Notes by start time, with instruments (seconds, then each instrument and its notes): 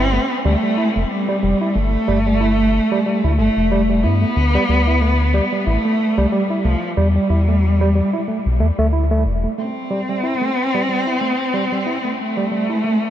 Already playing: analog synth bass G1, cello C4
0.13 tine electric piano A3
0.45 analog synth bass D2, tine electric piano G3, cello A3
0.63 tine electric piano G3
0.78 tine electric piano E4
0.96 analog synth bass F1, tine electric piano A3
1.10 cello G3
1.29 tine electric piano G3
1.43 analog synth bass F1, tine electric piano G3
1.61 tine electric piano E4
1.75 analog synth bass G1, tine electric piano A3, cello A3
2.08 analog synth bass G1, tine electric piano G3
2.26 tine electric piano G3
2.41 tine electric piano E4
2.59 tine electric piano A3
2.92 tine electric piano G3
3.06 tine electric piano G3
3.24 analog synth bass D2, tine electric piano E4
3.38 analog synth bass G1, cello A3, tine electric piano A3
3.57 analog synth bass F1
3.71 tine electric piano G3
3.89 tine electric piano G3
4.04 analog synth bass G2, cello B3, tine electric piano E4
4.22 tine electric piano A3
4.36 analog synth bass D2
4.55 tine electric piano G3
4.69 analog synth bass D2, tine electric piano G3
4.87 tine electric piano E4
5.02 tine electric piano A3
5.34 tine electric piano G3
5.52 tine electric piano G3
5.67 analog synth bass A1, cello A3, tine electric piano E4
5.85 tine electric piano A3
6.18 analog synth bass C2, tine electric piano G3
6.32 cello G3, tine electric piano G3
6.50 tine electric piano E4
6.65 analog synth bass C2, cello F3, tine electric piano A3
6.97 analog synth bass E2, tine electric piano G3, cello G3
7.16 tine electric piano G3
7.30 analog synth bass E2, tine electric piano E4
7.48 tine electric piano A3
7.81 tine electric piano G3
7.95 tine electric piano G3
8.13 tine electric piano E4
8.28 tine electric piano A3
8.46 analog synth bass B1
8.60 analog synth bass E2, tine electric piano A3
8.79 analog synth bass D2, tine electric piano A3
8.93 tine electric piano E4
9.11 tine electric piano A3
9.26 analog synth bass E1
9.44 tine electric piano A3
9.58 tine electric piano A3, cello C4
9.91 tine electric piano G3
10.09 tine electric piano G3
10.23 tine electric piano E4
10.42 tine electric piano A3
10.74 tine electric piano G3
10.89 tine electric piano G3
11.07 tine electric piano E4
11.21 tine electric piano A3
11.54 tine electric piano G3
11.72 tine electric piano G3
11.86 tine electric piano E4
12.05 tine electric piano A3
12.19 cello A3
12.37 tine electric piano G3
12.52 tine electric piano G3
12.70 tine electric piano E4
12.84 tine electric piano A3